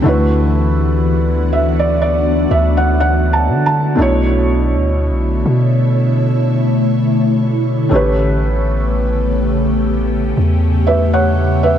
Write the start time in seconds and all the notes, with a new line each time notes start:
Already playing: E3
0.02 D2 D3 A3 B3 D4 E4 F#4
0.07 F#4 B4
1.53 E5
1.79 D5
2.02 D5
2.51 D2 E5
2.77 F#5
3.00 F#5
3.33 A5
3.49 D3
3.66 A5
3.95 B1 B2 D3 A3 D4 E4 C#5
4.00 E4 C#5
4.74 D2
5.10 B1
5.46 B2
7.89 A1 A2 C#3 A3 B3 C#4 G4
7.94 G4 B4
9.88 C#4
10.37 E2
10.87 B4 E5
11.13 C#5 F#5
11.63 B4 E5